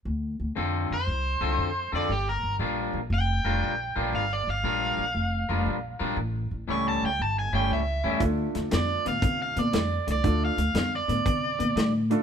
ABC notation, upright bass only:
X:1
M:4/4
L:1/8
Q:"Swing" 1/4=118
K:Dm
V:1 name="Upright bass" clef=bass
D,, D,, F,, F,, C,, C,, F,, F,, | G,,, G,,, B,,, B,,, F,,, F,,, B,,, B,,, | G,,, G,,, B,,, B,,, F,,, F,,, B,,, B,,, | A,,, A,,, ^C,, C,, G,,, G,,, C,, E,, |
D,, F,, F,, A,, C, B,, F,, C,, | D,, D,, F,, A,, C, B,, A,,2 |]